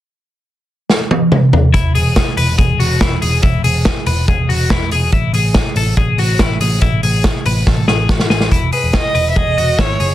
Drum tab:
HH |----------------|x-o-x-o-x-o-x-o-|x-o-x-o-x-o---o-|x-o-x-o-x-o-x-o-|
SD |--------o-------|----o-------o---|----o-------o---|----o-------o---|
T1 |----------o-----|----------------|----------------|----------------|
T2 |------------o---|----------------|----------------|----------------|
FT |--------------o-|----------------|----------------|----------------|
BD |----------------|o---o---o---o---|o---o---o---o---|o---o---o---o---|

HH |x-o-x-o---------|x-o-x-o-x-o---o-|
SD |----o---o-o-oooo|----o-------o---|
T1 |----------------|----------------|
T2 |----------------|----------------|
FT |----------------|----------------|
BD |o---o---o---o---|o---o---o---o---|